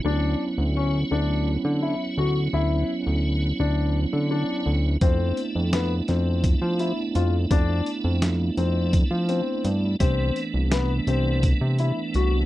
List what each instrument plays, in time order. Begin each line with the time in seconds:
0.03 analog synth bass D2, tonewheel organ F#3 B3 C#4 E4, grand piano D4
0.58 analog synth bass D2
0.77 grand piano C#4
1.11 analog synth bass D2, grand piano D4
1.65 analog synth bass D3
1.83 grand piano E4
2.18 analog synth bass D2, grand piano F#4
2.53 analog synth bass D2, grand piano E4
3.07 analog synth bass D2
3.60 analog synth bass D2, grand piano D4
4.13 analog synth bass D3
4.31 grand piano D4
4.66 analog synth bass D2
5.00 analog synth bass F2, tonewheel organ A3 B3 D4 E4, grand piano C4, kick, closed hi-hat
5.37 closed hi-hat
5.55 analog synth bass F2
5.73 grand piano B3, snare, closed hi-hat
6.08 analog synth bass F2, grand piano C4, snare, closed hi-hat
6.44 kick, closed hi-hat
6.62 analog synth bass F3
6.79 grand piano E4, closed hi-hat
7.15 analog synth bass F2, grand piano F4, closed hi-hat
7.51 analog synth bass F2, grand piano D4, kick, closed hi-hat
7.86 closed hi-hat
8.04 analog synth bass F2
8.22 snare, closed hi-hat
8.57 analog synth bass F2, grand piano C4, closed hi-hat
8.93 kick, closed hi-hat
9.11 analog synth bass F3
9.29 grand piano C4, closed hi-hat
9.65 analog synth bass G2, closed hi-hat
9.99 analog synth bass C2, tonewheel organ E3 A3 B3 D4, grand piano C4, kick, closed hi-hat
10.36 closed hi-hat
10.54 analog synth bass C2
10.72 grand piano B3, snare, closed hi-hat
11.07 analog synth bass C2, grand piano C4, closed hi-hat
11.43 kick, closed hi-hat
11.61 analog synth bass C3
11.78 grand piano E4, closed hi-hat
12.14 analog synth bass C2, grand piano F#4, closed hi-hat